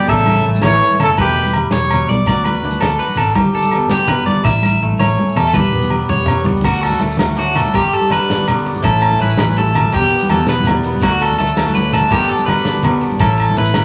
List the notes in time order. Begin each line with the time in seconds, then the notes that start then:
Already playing: B2 G4
0.07 A1 A2 E4 A4 E5, kick, closed hi-hat, muted conga, low agogo, shekere
0.12 C#3
0.26 C#4, closed hi-hat, high conga, low agogo
0.30 shekere
0.35 low conga, shekere
0.45 A1 A3, closed hi-hat
0.55 high conga, shekere
0.62 A1 E3 C#5, snare, closed hi-hat, muted conga, low conga, low agogo
0.73 shekere
0.80 C#4, closed hi-hat, shekere
0.91 high conga
0.99 F#1 C#3 A3 A4, closed hi-hat, low conga, low agogo, shekere
1.03 A4
1.17 E1 E2 B2 B4, muted steel-string acoustic guitar stroke, kick, closed hi-hat, muted conga, high conga, low agogo
1.21 G4
1.27 low conga
1.36 muted steel-string acoustic guitar stroke, closed hi-hat, low conga
1.45 high conga, low conga, shekere
1.53 G3, closed hi-hat, low conga, low agogo
1.71 E1 A2 C#5, snare, closed hi-hat, muted conga, shekere
1.83 high conga, shekere
1.90 B2, closed hi-hat, low conga, low agogo, shekere
2.00 shekere
2.08 B1 D5, muted steel-string acoustic guitar stroke, closed hi-hat, high conga, shekere
2.26 D2 D3 D5, kick, closed hi-hat, muted conga, low agogo, shekere
2.31 F#4
2.44 F#4 B4, closed hi-hat, high conga, low agogo, shekere
2.53 low conga, shekere
2.63 D2 D4, closed hi-hat
2.71 high conga, shekere
2.80 D2 A3 A4, snare, closed hi-hat, muted conga, low conga, low agogo, shekere
2.89 shekere
2.98 B4, closed hi-hat, shekere
3.02 F#4
3.09 high conga
3.16 G#1 A4, closed hi-hat, low agogo, shekere
3.21 D4
3.35 G1 G2 G4, muted clean electric guitar stroke, kick, closed hi-hat, muted conga, high conga, low agogo
3.45 low conga
3.54 D4 A4, closed hi-hat, low conga
3.62 high conga, low conga, shekere
3.71 closed hi-hat, low conga, low agogo
3.76 B3
3.90 G1 E2 G4, snare, closed hi-hat, muted conga, shekere
3.99 high conga, shekere
4.07 F#2 B4, closed hi-hat, low conga, low agogo, shekere
4.18 shekere
4.26 G1 G2 D5, closed hi-hat, high conga, shekere
4.37 low conga
4.45 A1 A2 E4 E5, kick, snare, muted conga, low agogo, shekere
4.54 shekere
4.63 snare, high conga, low conga, low agogo, shekere
4.71 low conga, shekere
4.81 A1 A3, shekere
4.91 high conga, low conga
4.98 A1 E3 C#5, high tom, muted conga, low conga, low agogo, shekere
5.08 shekere
5.18 C#4, high tom
5.27 high conga, shekere
5.35 E2 G3 A4, low conga, low agogo, shekere
5.47 A3
5.53 E1 E2 G4 B4, kick, mid tom, muted conga, high conga, low agogo, shekere
5.64 low conga
5.73 B3, mid tom
5.82 high conga, shekere
5.90 G3, low conga, low agogo
6.01 shekere
6.09 E1 C#5, floor tom, muted conga
6.17 high conga
6.26 B3, floor tom, low conga, low agogo, shekere
6.36 low conga, shekere
6.44 C#2 G3, muted clean electric guitar stroke, floor tom, high conga
6.52 low conga, shekere
6.61 D2 D3 F#4, muted steel-string acoustic guitar stroke, kick, crash, muted conga, low agogo, shekere
6.83 F#4 A4, ride, low agogo
6.90 high conga, low conga, shekere
6.99 D2 A3 A4, ride, muted conga
7.11 shekere
7.17 D2 F#4, snare, ride, low conga, low agogo
7.27 high conga, low conga, shekere
7.36 A2 D4 F#4, ride, muted conga
7.48 shekere
7.55 F#4 A4, ride, low conga, low agogo, shekere
7.66 high conga
7.74 G1 G2 G4, kick, ride, muted conga, low conga, low agogo, shekere
7.84 low conga
7.93 A4, ride
8.01 high conga
8.10 G2 D3 F#4 B4, snare, ride, muted conga, low conga, low agogo, shekere
8.19 low conga
8.29 G1 D4, snare, ride, shekere
8.38 high conga
8.48 G2 B3, ride, muted conga, low agogo, shekere
8.66 D4, ride, shekere
8.76 high conga, low conga, shekere
8.82 A1 A2 E4 A4, kick, ride, muted conga, low agogo, shekere
9.01 C#4, ride, low agogo
9.11 high conga, low conga, shekere
9.19 A1 E3 E4 B4, ride, muted conga
9.29 shekere
9.38 A1 A2, snare, ride, low conga, low agogo
9.49 high conga, low conga, shekere
9.56 G2 A4, ride, muted conga
9.66 shekere
9.74 F#2, ride, low conga, low agogo, shekere
9.86 high conga
9.92 E1 E2 G4, kick, ride, muted conga, low conga, low agogo, shekere
10.04 low conga
10.11 B3, ride
10.19 high conga, shekere
10.28 E2 E3 F#4 A4, ride, muted conga, low conga, low agogo, shekere
10.43 E1, snare, ride, low conga
10.47 B3 B4, shekere
10.60 high conga
10.64 muted steel-string acoustic guitar stroke, ride, low agogo, shekere
10.69 G3, muted conga, low conga
10.84 B3, ride, shekere
10.92 high conga, low conga, shekere
11.01 D2 D3 E4 F#4, kick, ride, muted conga, low agogo, shekere
11.11 F#4
11.20 F#4 A4, ride, low agogo
11.29 high conga, low conga, shekere
11.38 D2 A3 A4, ride, muted conga
11.47 shekere
11.56 D2 E4, snare, ride, low conga, low agogo
11.65 F#4, high conga, low conga, shekere
11.75 A2 D4 B4, ride, muted conga
11.83 shekere
11.92 F#4 A4, ride, low conga, low agogo, shekere
12.02 high conga
12.10 G1 G2 D3 B3 D4 G4, muted steel-string acoustic guitar stroke, kick, ride, muted conga, low conga, low agogo, shekere
12.20 low conga
12.29 D4 A4, ride
12.38 high conga, shekere
12.46 G2 D3 F#4 B4, ride, muted conga, low conga, low agogo, shekere
12.57 low conga
12.65 G1 D4, snare, ride, shekere
12.76 high conga
12.83 G2 B3, ride, muted conga, low conga, low agogo, shekere
13.01 D4, ride, shekere
13.11 high conga, low conga, shekere
13.20 A1 A2 E4 A4, kick, ride, muted conga, low conga, low agogo, shekere
13.38 ride, low agogo, shekere
13.50 high conga, low conga
13.57 A1 E4 B4, muted steel-string acoustic guitar stroke, ride, muted conga, low conga
13.65 shekere
13.74 A1 C#4, snare, ride, low conga, low agogo